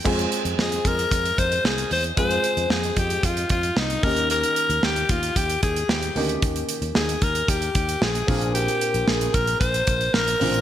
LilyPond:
<<
  \new Staff \with { instrumentName = "Alto saxophone" } { \time 4/4 \key f \minor \tempo 4 = 113 r4 aes'8 bes'4 c''8 aes'8 c''8 | c''4 aes'8 g'8 f'8 f'8 ees'8 bes'8 | bes'4 g'8 f'8 g'8 aes'8 g'8. r16 | r4 aes'8 bes'8 g'4 aes'4 |
g'4 aes'8 bes'8 c''4 bes'4 | }
  \new Staff \with { instrumentName = "Grand piano" } { \time 4/4 \key f \minor <aes c' f' aes'>1 | <aes c' f' aes'>2.~ <aes c' f' aes'>8 <bes des' ees' g'>8~ | <bes des' ees' g'>2.~ <bes des' ees' g'>8 <bes des' ees' g'>8~ | <bes des' ees' g'>2.~ <bes des' ees' g'>8 <c' d' f' bes'>8~ |
<c' d' f' bes'>2.~ <c' d' f' bes'>8 <c' d' f' bes'>8 | }
  \new Staff \with { instrumentName = "Grand piano" } { \clef bass \time 4/4 \key f \minor r1 | r2. r8 ees8~ | ees4 r2 r8 ees8~ | ees4 r2 r8 bes,8~ |
bes,4 r2 r8 bes,8 | }
  \new Staff \with { instrumentName = "Fretless electric bass" } { \clef bass \time 4/4 \key f \minor f,8 r16 f,16 f,8 f,8 f,8 f,8 c,8 fes,8 | f,8 r16 f,16 f,8 f,8 f,8 f,8 c,8 ees,8~ | ees,8 r16 ees,16 ees,8 ees,8 ees,8 ees,8 ees,8 d,8 | ees,8 r16 ees,16 ees,8 ees,8 ees,8 ees,8 bes,,8 bes,,8~ |
bes,,8 r16 bes,,16 bes,,8 bes,,8 bes,,8 bes,,8 bes,,8 a,,8 | }
  \new DrumStaff \with { instrumentName = "Drums" } \drummode { \time 4/4 <cymc bd>16 hh16 hh16 hh16 sn16 hh16 <hh bd>16 hh16 <hh bd>16 hh16 <hh bd>16 hh16 sn16 hh16 hho16 hh16 | <hh bd>16 hh16 hh16 hh16 sn16 hh16 <hh bd>16 hh16 <hh bd>16 hh16 <hh bd>16 hh16 sn16 hh16 <hho bd>16 hh16 | hh16 hh16 hh16 hh16 sn16 hh16 <hh bd>16 hh16 <hh bd>16 hh16 <hh bd>16 hh16 sn16 hh16 hho16 hh16 | <hh bd>16 hh16 hh16 hh16 sn16 hh16 <hh bd>16 hh16 <hh bd>16 hh16 <hh bd>16 hh16 sn16 hh16 <hho bd>16 hh16 |
hh16 hh16 hh16 hh16 sn16 hh16 <hh bd>16 hh16 <hh bd>16 hh16 <hh bd>16 hh16 sn16 hh16 hho16 hh16 | }
>>